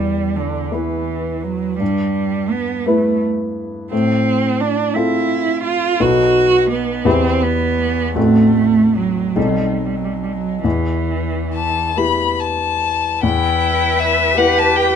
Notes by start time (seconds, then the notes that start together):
Already playing: E2 G3
0.36 D3
0.72 E3 B3 E4 B4
1.43 F#3
1.79 G2 G3
2.51 B3
2.86 A3 B3 E4 B4
3.92 A2 C4
4.61 D4
4.94 C4 E4 F4 A4
5.64 F4
6.00 B1 B3 D#4 F#4 A4
6.71 B3
7.05 E2 B3 C4 E4 G4
7.43 B3
8.15 A1 A3 C4 F#4 A4
8.96 F#3
9.36 B1 G3 C4 D#4 A4
9.78 F#3
9.86 G3
9.96 F#3
10.05 G3
10.14 F#3
10.23 G3
10.33 F#3
10.64 E2 E3
11.55 A5
11.97 B3 E4 G4 B5
12.40 A5
13.23 E2 E4 B4 G5
13.99 E5
14.37 B3 E4 G4 B4 F#5
14.58 A5
14.76 G5